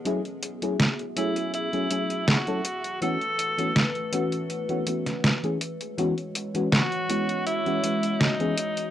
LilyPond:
<<
  \new Staff \with { instrumentName = "Ambient pad" } { \time 4/4 \key e \major \tempo 4 = 81 <b fis' gis' e''>2.~ <b fis' gis' e''>8 <e a b'>8~ | <e a b'>2.~ <e a b'>8 <gis fis' cis''>8~ | <gis fis' cis''>1 | }
  \new Staff \with { instrumentName = "Tenor saxophone" } { \time 4/4 \key e \major r4. e'8 e'4 fis'4 | a'2 r2 | r4 fis'4 e'4 dis'4 | }
  \new Staff \with { instrumentName = "FM electric piano" } { \time 4/4 \key e \major <fis a cis' e' gis'>16 r8 <fis a cis' e' gis'>16 r8 <fis a cis' e' gis'>8. <fis a cis' e' gis'>16 <fis a cis' e' gis'>8. <fis a cis' e' a'>16 r8 | <e a b cis' fis'>16 r8 <e a b cis' fis'>16 r8 <e a b cis' fis'>8. <e a b cis' fis'>16 <e a b cis' fis'>8. <e a b cis' gis'>16 r8 | <e gis b cis' fis'>16 r8 <e gis b cis' fis'>16 r8 <e gis b cis' fis'>8. <e gis b cis' fis'>16 <e gis b cis' fis'>8. <e gis b cis' gis'>16 r8 | }
  \new DrumStaff \with { instrumentName = "Drums" } \drummode { \time 4/4 hh16 hh16 hh16 hh16 <hh sn>16 hh16 hh16 hh16 hh16 hh16 hh16 hh16 <hh sn>16 hh16 hh16 hh16 | hh16 hh16 hh16 hh16 <hh sn>16 hh16 hh16 hh16 hh16 hh16 hh16 <hh sn>16 <hh sn>16 hh16 hh16 hh16 | hh16 hh16 hh16 hh16 <hh sn>16 hh16 hh16 hh16 hh16 hh16 hh16 hh16 <hh sn>16 hh16 hh16 hh16 | }
>>